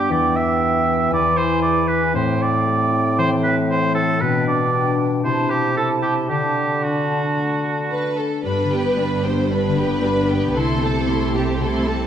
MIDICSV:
0, 0, Header, 1, 12, 480
1, 0, Start_track
1, 0, Key_signature, 1, "major"
1, 0, Tempo, 514139
1, 100, Time_signature, 4, 2, 24, 8
1, 5381, Tempo, 536673
1, 7781, Tempo, 526316
1, 11084, End_track
2, 0, Start_track
2, 0, Title_t, "Violin section"
2, 0, Program_c, 0, 48
2, 7789, Note_on_c, 0, 83, 36
2, 8011, Note_off_c, 0, 83, 0
2, 8031, Note_on_c, 0, 79, 32
2, 8268, Note_off_c, 0, 79, 0
2, 8271, Note_on_c, 0, 83, 33
2, 8501, Note_on_c, 0, 79, 30
2, 8509, Note_off_c, 0, 83, 0
2, 8745, Note_off_c, 0, 79, 0
2, 8746, Note_on_c, 0, 83, 31
2, 8972, Note_off_c, 0, 83, 0
2, 8988, Note_on_c, 0, 79, 37
2, 9231, Note_off_c, 0, 79, 0
2, 9233, Note_on_c, 0, 83, 31
2, 9468, Note_on_c, 0, 79, 28
2, 9473, Note_off_c, 0, 83, 0
2, 9703, Note_on_c, 0, 84, 37
2, 9708, Note_off_c, 0, 79, 0
2, 9928, Note_off_c, 0, 84, 0
2, 9952, Note_on_c, 0, 81, 36
2, 10187, Note_on_c, 0, 84, 36
2, 10190, Note_off_c, 0, 81, 0
2, 10428, Note_off_c, 0, 84, 0
2, 10428, Note_on_c, 0, 81, 31
2, 10666, Note_off_c, 0, 81, 0
2, 10671, Note_on_c, 0, 84, 32
2, 10890, Note_off_c, 0, 84, 0
2, 10906, Note_on_c, 0, 81, 39
2, 11084, Note_off_c, 0, 81, 0
2, 11084, End_track
3, 0, Start_track
3, 0, Title_t, "Flute section"
3, 0, Program_c, 1, 73
3, 0, Note_on_c, 1, 79, 48
3, 1055, Note_off_c, 1, 79, 0
3, 1055, Note_on_c, 1, 80, 45
3, 2012, Note_off_c, 1, 80, 0
3, 2013, Note_on_c, 1, 79, 50
3, 3721, Note_off_c, 1, 79, 0
3, 3942, Note_on_c, 1, 79, 45
3, 4862, Note_off_c, 1, 79, 0
3, 4896, Note_on_c, 1, 81, 45
3, 5369, Note_off_c, 1, 81, 0
3, 5380, Note_on_c, 1, 81, 46
3, 5847, Note_off_c, 1, 81, 0
3, 5864, Note_on_c, 1, 81, 37
3, 6335, Note_off_c, 1, 81, 0
3, 6351, Note_on_c, 1, 81, 43
3, 7524, Note_off_c, 1, 81, 0
3, 11084, End_track
4, 0, Start_track
4, 0, Title_t, "Oboe"
4, 0, Program_c, 2, 68
4, 108, Note_on_c, 2, 74, 65
4, 337, Note_on_c, 2, 76, 56
4, 351, Note_off_c, 2, 74, 0
4, 1052, Note_off_c, 2, 76, 0
4, 1057, Note_on_c, 2, 74, 80
4, 1276, Note_on_c, 2, 72, 71
4, 1290, Note_off_c, 2, 74, 0
4, 1510, Note_off_c, 2, 72, 0
4, 1515, Note_on_c, 2, 74, 75
4, 1753, Note_on_c, 2, 71, 70
4, 1767, Note_off_c, 2, 74, 0
4, 2001, Note_off_c, 2, 71, 0
4, 2005, Note_on_c, 2, 72, 60
4, 2258, Note_on_c, 2, 74, 68
4, 2272, Note_off_c, 2, 72, 0
4, 2969, Note_off_c, 2, 74, 0
4, 2975, Note_on_c, 2, 72, 77
4, 3083, Note_off_c, 2, 72, 0
4, 3205, Note_on_c, 2, 71, 72
4, 3315, Note_off_c, 2, 71, 0
4, 3457, Note_on_c, 2, 72, 67
4, 3678, Note_off_c, 2, 72, 0
4, 3684, Note_on_c, 2, 69, 70
4, 3926, Note_on_c, 2, 71, 71
4, 3940, Note_off_c, 2, 69, 0
4, 4171, Note_off_c, 2, 71, 0
4, 4179, Note_on_c, 2, 74, 61
4, 4636, Note_off_c, 2, 74, 0
4, 4897, Note_on_c, 2, 72, 64
4, 5134, Note_on_c, 2, 67, 63
4, 5148, Note_off_c, 2, 72, 0
4, 5380, Note_off_c, 2, 67, 0
4, 5385, Note_on_c, 2, 69, 58
4, 5490, Note_off_c, 2, 69, 0
4, 5614, Note_on_c, 2, 67, 54
4, 5723, Note_off_c, 2, 67, 0
4, 5853, Note_on_c, 2, 67, 54
4, 6336, Note_on_c, 2, 66, 48
4, 6349, Note_off_c, 2, 67, 0
4, 7541, Note_off_c, 2, 66, 0
4, 11084, End_track
5, 0, Start_track
5, 0, Title_t, "Violin section"
5, 0, Program_c, 3, 48
5, 7302, Note_on_c, 3, 71, 55
5, 7526, Note_off_c, 3, 71, 0
5, 7549, Note_on_c, 3, 69, 48
5, 7785, Note_off_c, 3, 69, 0
5, 7787, Note_on_c, 3, 71, 59
5, 8494, Note_off_c, 3, 71, 0
5, 8513, Note_on_c, 3, 72, 48
5, 8748, Note_on_c, 3, 71, 53
5, 8751, Note_off_c, 3, 72, 0
5, 9703, Note_on_c, 3, 69, 59
5, 9711, Note_off_c, 3, 71, 0
5, 10425, Note_off_c, 3, 69, 0
5, 10433, Note_on_c, 3, 67, 50
5, 10664, Note_off_c, 3, 67, 0
5, 10679, Note_on_c, 3, 69, 49
5, 11084, Note_off_c, 3, 69, 0
5, 11084, End_track
6, 0, Start_track
6, 0, Title_t, "Clarinet"
6, 0, Program_c, 4, 71
6, 0, Note_on_c, 4, 59, 47
6, 1053, Note_on_c, 4, 64, 49
6, 1067, Note_off_c, 4, 59, 0
6, 1988, Note_off_c, 4, 64, 0
6, 1994, Note_on_c, 4, 60, 55
6, 3888, Note_off_c, 4, 60, 0
6, 3935, Note_on_c, 4, 62, 49
6, 4895, Note_on_c, 4, 64, 44
6, 4909, Note_off_c, 4, 62, 0
6, 5374, Note_off_c, 4, 64, 0
6, 5379, Note_on_c, 4, 64, 41
6, 5851, Note_on_c, 4, 62, 42
6, 5864, Note_off_c, 4, 64, 0
6, 6196, Note_off_c, 4, 62, 0
6, 6342, Note_on_c, 4, 62, 41
6, 7520, Note_off_c, 4, 62, 0
6, 11084, End_track
7, 0, Start_track
7, 0, Title_t, "Harp"
7, 0, Program_c, 5, 46
7, 0, Note_on_c, 5, 43, 44
7, 0, Note_on_c, 5, 62, 40
7, 0, Note_on_c, 5, 67, 37
7, 91, Note_on_c, 5, 40, 44
7, 111, Note_off_c, 5, 43, 0
7, 114, Note_off_c, 5, 62, 0
7, 327, Note_on_c, 5, 64, 38
7, 552, Note_off_c, 5, 67, 0
7, 563, Note_on_c, 5, 67, 40
7, 792, Note_off_c, 5, 64, 0
7, 803, Note_on_c, 5, 64, 35
7, 1030, Note_off_c, 5, 40, 0
7, 1041, Note_on_c, 5, 40, 48
7, 1068, Note_off_c, 5, 67, 0
7, 1272, Note_off_c, 5, 64, 0
7, 1284, Note_on_c, 5, 64, 35
7, 1530, Note_on_c, 5, 68, 40
7, 1755, Note_off_c, 5, 64, 0
7, 1766, Note_on_c, 5, 64, 40
7, 2003, Note_on_c, 5, 45, 50
7, 2024, Note_off_c, 5, 40, 0
7, 2028, Note_off_c, 5, 68, 0
7, 2229, Note_off_c, 5, 64, 0
7, 2240, Note_on_c, 5, 64, 42
7, 2488, Note_on_c, 5, 67, 35
7, 2707, Note_off_c, 5, 64, 0
7, 2718, Note_on_c, 5, 64, 35
7, 2968, Note_on_c, 5, 52, 43
7, 3198, Note_off_c, 5, 64, 0
7, 3435, Note_off_c, 5, 67, 0
7, 3446, Note_on_c, 5, 67, 41
7, 3684, Note_on_c, 5, 64, 47
7, 3933, Note_on_c, 5, 47, 52
7, 3948, Note_off_c, 5, 45, 0
7, 3948, Note_off_c, 5, 64, 0
7, 3951, Note_off_c, 5, 52, 0
7, 4173, Note_on_c, 5, 62, 40
7, 4404, Note_off_c, 5, 67, 0
7, 4416, Note_on_c, 5, 67, 40
7, 4647, Note_off_c, 5, 62, 0
7, 4658, Note_on_c, 5, 62, 38
7, 4895, Note_on_c, 5, 48, 43
7, 4914, Note_off_c, 5, 47, 0
7, 4916, Note_off_c, 5, 62, 0
7, 5138, Note_on_c, 5, 64, 35
7, 5383, Note_on_c, 5, 69, 34
7, 5601, Note_off_c, 5, 64, 0
7, 5612, Note_on_c, 5, 64, 37
7, 5855, Note_on_c, 5, 50, 41
7, 5873, Note_off_c, 5, 64, 0
7, 5876, Note_off_c, 5, 48, 0
7, 5876, Note_off_c, 5, 67, 0
7, 6086, Note_off_c, 5, 69, 0
7, 6097, Note_on_c, 5, 69, 31
7, 6339, Note_on_c, 5, 62, 31
7, 6567, Note_off_c, 5, 69, 0
7, 6578, Note_on_c, 5, 69, 28
7, 6815, Note_on_c, 5, 57, 29
7, 7051, Note_off_c, 5, 69, 0
7, 7062, Note_on_c, 5, 69, 29
7, 7290, Note_off_c, 5, 62, 0
7, 7300, Note_on_c, 5, 62, 33
7, 7533, Note_off_c, 5, 69, 0
7, 7544, Note_on_c, 5, 69, 34
7, 7784, Note_on_c, 5, 43, 40
7, 7798, Note_off_c, 5, 57, 0
7, 7801, Note_off_c, 5, 50, 0
7, 7802, Note_off_c, 5, 69, 0
7, 7951, Note_on_c, 5, 50, 27
7, 8112, Note_on_c, 5, 59, 29
7, 8260, Note_off_c, 5, 62, 0
7, 8271, Note_on_c, 5, 62, 25
7, 8435, Note_on_c, 5, 67, 31
7, 8580, Note_off_c, 5, 59, 0
7, 8591, Note_on_c, 5, 59, 26
7, 8735, Note_off_c, 5, 43, 0
7, 8746, Note_on_c, 5, 43, 31
7, 8895, Note_off_c, 5, 50, 0
7, 8906, Note_on_c, 5, 50, 27
7, 9058, Note_off_c, 5, 59, 0
7, 9069, Note_on_c, 5, 59, 29
7, 9217, Note_off_c, 5, 62, 0
7, 9228, Note_on_c, 5, 62, 29
7, 9380, Note_off_c, 5, 67, 0
7, 9391, Note_on_c, 5, 67, 31
7, 9539, Note_off_c, 5, 59, 0
7, 9550, Note_on_c, 5, 59, 32
7, 9706, Note_on_c, 5, 48, 39
7, 9727, Note_off_c, 5, 62, 0
7, 9728, Note_off_c, 5, 50, 0
7, 9729, Note_off_c, 5, 43, 0
7, 9729, Note_off_c, 5, 59, 0
7, 9729, Note_off_c, 5, 67, 0
7, 9865, Note_on_c, 5, 57, 30
7, 10022, Note_on_c, 5, 60, 33
7, 10182, Note_on_c, 5, 64, 27
7, 10337, Note_on_c, 5, 69, 33
7, 10486, Note_off_c, 5, 60, 0
7, 10497, Note_on_c, 5, 60, 31
7, 10646, Note_off_c, 5, 48, 0
7, 10656, Note_on_c, 5, 48, 33
7, 10809, Note_off_c, 5, 57, 0
7, 10820, Note_on_c, 5, 57, 28
7, 10966, Note_off_c, 5, 60, 0
7, 10977, Note_on_c, 5, 60, 28
7, 11084, Note_off_c, 5, 48, 0
7, 11084, Note_off_c, 5, 57, 0
7, 11084, Note_off_c, 5, 60, 0
7, 11084, Note_off_c, 5, 64, 0
7, 11084, Note_off_c, 5, 69, 0
7, 11084, End_track
8, 0, Start_track
8, 0, Title_t, "French horn section"
8, 0, Program_c, 6, 60
8, 7779, Note_on_c, 6, 59, 39
8, 7780, Note_on_c, 6, 62, 42
8, 8709, Note_off_c, 6, 59, 0
8, 8710, Note_off_c, 6, 62, 0
8, 8747, Note_on_c, 6, 59, 40
8, 8749, Note_on_c, 6, 62, 39
8, 9691, Note_off_c, 6, 59, 0
8, 9692, Note_off_c, 6, 62, 0
8, 9722, Note_on_c, 6, 64, 42
8, 9723, Note_on_c, 6, 60, 42
8, 10653, Note_off_c, 6, 64, 0
8, 10654, Note_off_c, 6, 60, 0
8, 10672, Note_on_c, 6, 64, 37
8, 10674, Note_on_c, 6, 60, 39
8, 11084, Note_off_c, 6, 60, 0
8, 11084, Note_off_c, 6, 64, 0
8, 11084, End_track
9, 0, Start_track
9, 0, Title_t, "Viola section"
9, 0, Program_c, 7, 48
9, 7782, Note_on_c, 7, 62, 33
9, 7783, Note_on_c, 7, 55, 34
9, 8007, Note_off_c, 7, 55, 0
9, 8007, Note_off_c, 7, 62, 0
9, 8024, Note_on_c, 7, 59, 33
9, 8026, Note_on_c, 7, 67, 36
9, 8263, Note_on_c, 7, 55, 32
9, 8263, Note_on_c, 7, 62, 35
9, 8265, Note_off_c, 7, 59, 0
9, 8266, Note_off_c, 7, 67, 0
9, 8505, Note_off_c, 7, 55, 0
9, 8505, Note_off_c, 7, 62, 0
9, 8506, Note_on_c, 7, 67, 31
9, 8509, Note_on_c, 7, 59, 31
9, 8744, Note_on_c, 7, 55, 34
9, 8748, Note_off_c, 7, 67, 0
9, 8748, Note_on_c, 7, 62, 35
9, 8749, Note_off_c, 7, 59, 0
9, 8971, Note_off_c, 7, 55, 0
9, 8973, Note_off_c, 7, 62, 0
9, 8991, Note_on_c, 7, 59, 31
9, 8992, Note_on_c, 7, 67, 34
9, 9233, Note_off_c, 7, 59, 0
9, 9233, Note_off_c, 7, 67, 0
9, 9236, Note_on_c, 7, 62, 34
9, 9237, Note_on_c, 7, 55, 34
9, 9473, Note_on_c, 7, 59, 30
9, 9474, Note_off_c, 7, 62, 0
9, 9474, Note_on_c, 7, 67, 32
9, 9475, Note_off_c, 7, 55, 0
9, 9704, Note_on_c, 7, 57, 36
9, 9707, Note_on_c, 7, 64, 31
9, 9711, Note_off_c, 7, 59, 0
9, 9711, Note_off_c, 7, 67, 0
9, 9929, Note_off_c, 7, 57, 0
9, 9931, Note_off_c, 7, 64, 0
9, 9947, Note_on_c, 7, 60, 33
9, 9947, Note_on_c, 7, 69, 34
9, 10184, Note_on_c, 7, 57, 34
9, 10185, Note_on_c, 7, 64, 33
9, 10188, Note_off_c, 7, 60, 0
9, 10188, Note_off_c, 7, 69, 0
9, 10420, Note_on_c, 7, 69, 31
9, 10421, Note_on_c, 7, 60, 30
9, 10426, Note_off_c, 7, 57, 0
9, 10427, Note_off_c, 7, 64, 0
9, 10661, Note_on_c, 7, 64, 37
9, 10662, Note_off_c, 7, 69, 0
9, 10662, Note_on_c, 7, 57, 35
9, 10663, Note_off_c, 7, 60, 0
9, 10885, Note_off_c, 7, 57, 0
9, 10885, Note_off_c, 7, 64, 0
9, 10901, Note_on_c, 7, 60, 36
9, 10901, Note_on_c, 7, 69, 33
9, 11084, Note_off_c, 7, 60, 0
9, 11084, Note_off_c, 7, 69, 0
9, 11084, End_track
10, 0, Start_track
10, 0, Title_t, "Bassoon"
10, 0, Program_c, 8, 70
10, 0, Note_on_c, 8, 55, 47
10, 96, Note_on_c, 8, 52, 45
10, 110, Note_off_c, 8, 55, 0
10, 2009, Note_on_c, 8, 45, 55
10, 2023, Note_off_c, 8, 52, 0
10, 3928, Note_off_c, 8, 45, 0
10, 3934, Note_on_c, 8, 47, 52
10, 4858, Note_off_c, 8, 47, 0
10, 4895, Note_on_c, 8, 48, 46
10, 5861, Note_on_c, 8, 50, 49
10, 5874, Note_off_c, 8, 48, 0
10, 7545, Note_off_c, 8, 50, 0
10, 11084, End_track
11, 0, Start_track
11, 0, Title_t, "Cello section"
11, 0, Program_c, 10, 48
11, 7785, Note_on_c, 10, 43, 36
11, 9675, Note_off_c, 10, 43, 0
11, 9722, Note_on_c, 10, 48, 37
11, 11084, Note_off_c, 10, 48, 0
11, 11084, End_track
12, 0, Start_track
12, 0, Title_t, "Double bass section"
12, 0, Program_c, 11, 48
12, 7786, Note_on_c, 11, 31, 36
12, 9676, Note_off_c, 11, 31, 0
12, 9717, Note_on_c, 11, 36, 39
12, 11084, Note_off_c, 11, 36, 0
12, 11084, End_track
0, 0, End_of_file